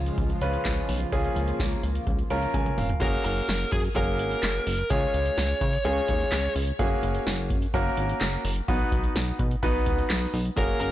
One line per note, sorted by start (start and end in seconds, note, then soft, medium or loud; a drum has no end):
0.00 0.11 C#2 loud
0.00 2.98 C#3 medium
0.00 2.98 F3 medium
0.00 1.11 G#3 medium
0.00 2.98 F4 medium
0.06 closed hi-hat medium
0.18 0.34 C#2 loud
0.18 kick loud
0.18 closed hi-hat medium
0.30 closed hi-hat soft
0.41 0.58 C#2 medium
0.41 0.98 C#4 medium
0.41 0.98 F4 medium
0.41 0.98 B4 loud
0.41 closed hi-hat medium
0.54 closed hi-hat medium
0.65 0.82 C#2 loud
0.65 kick loud
0.65 snare loud
0.65 clap medium
0.65 closed hi-hat medium
0.77 closed hi-hat soft
0.89 1.05 B1 loud
0.89 open hi-hat medium
1.00 closed hi-hat medium
1.12 1.29 C#2 loud
1.12 3.00 A#3 medium
1.12 1.88 C#4 medium
1.12 1.88 F4 medium
1.12 1.88 G#4 loud
1.12 kick loud
1.12 closed hi-hat medium
1.24 closed hi-hat medium
1.36 1.53 C#2 loud
1.36 closed hi-hat medium
1.48 closed hi-hat medium
1.60 1.76 C#2 loud
1.60 kick loud
1.60 snare loud
1.60 closed hi-hat medium
1.71 closed hi-hat medium
1.83 2.00 C#2 loud
1.83 closed hi-hat medium
1.95 closed hi-hat medium
2.07 2.23 C#2 loud
2.07 kick loud
2.07 closed hi-hat medium
2.19 closed hi-hat medium
2.30 2.47 C#2 loud
2.30 2.87 C#4 medium
2.30 2.87 F4 medium
2.30 2.87 A#4 loud
2.30 2.52 A#5 medium
2.30 closed hi-hat medium
2.43 closed hi-hat medium
2.54 2.71 C#2 medium
2.54 2.76 G#5 medium
2.54 kick loud
2.54 closed hi-hat medium
2.54 high tom medium
2.66 closed hi-hat soft
2.66 mid tom medium
2.78 2.94 F1 loud
2.78 3.00 F5 medium
2.78 mid tom medium
2.78 open hi-hat medium
2.89 closed hi-hat medium
2.89 floor tom loud
3.01 3.18 F#1 loud
3.01 3.77 A#3 medium
3.01 3.77 C#4 medium
3.01 3.77 F#4 medium
3.01 3.77 G#4 medium
3.01 3.24 A#4 medium
3.01 kick loud
3.01 closed hi-hat medium
3.01 crash loud
3.25 3.42 F#1 loud
3.25 3.72 A#4 medium
3.25 closed hi-hat medium
3.37 closed hi-hat medium
3.49 3.65 F#1 loud
3.49 snare loud
3.49 closed hi-hat medium
3.72 3.89 F#2 loud
3.72 3.79 G#4 medium
3.72 kick medium
3.72 closed hi-hat medium
3.84 closed hi-hat medium
3.96 4.21 F#1 loud
3.96 4.72 A#3 medium
3.96 4.72 C#4 medium
3.96 4.72 F#4 medium
3.96 4.72 G#4 medium
3.96 4.93 A#4 medium
3.96 kick medium
3.96 closed hi-hat medium
4.19 4.36 G#1 loud
4.19 closed hi-hat medium
4.32 closed hi-hat medium
4.43 4.60 F#1 loud
4.43 snare loud
4.43 clap medium
4.43 closed hi-hat medium
4.67 4.83 F#1 loud
4.67 open hi-hat medium
4.78 closed hi-hat medium
4.90 5.07 C#2 loud
4.90 5.66 G#3 medium
4.90 5.66 C#4 medium
4.90 5.66 F4 medium
4.90 5.66 G#4 medium
4.90 5.84 C#5 loud
4.90 kick loud
4.90 closed hi-hat medium
5.14 5.30 C#2 loud
5.14 closed hi-hat medium
5.26 closed hi-hat medium
5.38 5.54 C#2 loud
5.38 snare loud
5.38 closed hi-hat medium
5.61 5.78 C#3 loud
5.61 kick loud
5.61 closed hi-hat medium
5.73 closed hi-hat medium
5.85 6.01 C#2 loud
5.85 6.61 G#3 medium
5.85 6.61 C#4 medium
5.85 6.61 F4 medium
5.85 6.61 G#4 medium
5.85 6.52 C#5 loud
5.85 closed hi-hat medium
6.08 6.25 D#2 medium
6.08 kick medium
6.08 closed hi-hat medium
6.20 closed hi-hat medium
6.32 6.49 C#2 loud
6.32 snare loud
6.32 clap loud
6.32 closed hi-hat medium
6.56 6.72 C#2 loud
6.56 open hi-hat medium
6.67 closed hi-hat medium
6.79 6.96 F#1 loud
6.79 7.55 A#3 medium
6.79 7.55 C#4 medium
6.79 7.55 F#4 medium
6.79 7.55 G#4 loud
6.79 kick loud
6.79 closed hi-hat medium
7.03 7.19 F#1 loud
7.03 closed hi-hat medium
7.15 closed hi-hat medium
7.27 7.52 F#1 loud
7.27 snare loud
7.27 closed hi-hat medium
7.50 7.67 F#2 loud
7.50 kick loud
7.50 closed hi-hat medium
7.62 closed hi-hat medium
7.74 7.90 F#1 loud
7.74 8.50 A#3 loud
7.74 8.50 C#4 medium
7.74 8.50 F#4 medium
7.74 8.50 A#4 loud
7.74 kick medium
7.74 closed hi-hat medium
7.97 8.14 G#1 loud
7.97 closed hi-hat medium
8.09 closed hi-hat medium
8.21 8.38 F#1 loud
8.21 snare loud
8.21 clap loud
8.21 closed hi-hat medium
8.45 8.61 F#1 loud
8.45 open hi-hat medium
8.56 closed hi-hat medium
8.68 8.85 B1 loud
8.68 9.44 B3 medium
8.68 9.44 D#4 medium
8.68 9.44 F#4 medium
8.68 9.44 B4 loud
8.68 kick loud
8.68 closed hi-hat medium
8.92 9.08 B1 loud
8.92 kick medium
8.92 closed hi-hat medium
9.04 closed hi-hat medium
9.16 9.32 B1 loud
9.16 snare loud
9.16 closed hi-hat medium
9.39 9.56 B2 loud
9.39 kick loud
9.39 closed hi-hat medium
9.51 closed hi-hat medium
9.63 9.88 B1 loud
9.63 10.39 B3 medium
9.63 10.39 D#4 medium
9.63 10.39 F#4 medium
9.63 10.38 B4 loud
9.63 kick loud
9.63 closed hi-hat medium
9.86 10.03 C#2 medium
9.86 kick loud
9.86 closed hi-hat medium
9.98 closed hi-hat medium
10.10 10.27 B1 loud
10.10 snare loud
10.10 clap loud
10.10 closed hi-hat medium
10.34 10.50 B1 loud
10.34 open hi-hat medium
10.45 closed hi-hat medium
10.57 10.74 F#1 loud
10.57 10.92 C#3 medium
10.57 10.92 G#3 medium
10.57 10.92 A#3 medium
10.57 10.92 C#4 medium
10.57 10.92 F#4 medium
10.57 10.92 G#4 medium
10.57 10.80 A#4 medium
10.57 kick loud
10.57 closed hi-hat medium
10.81 10.92 F#1 loud
10.81 10.92 A#4 medium
10.81 closed hi-hat medium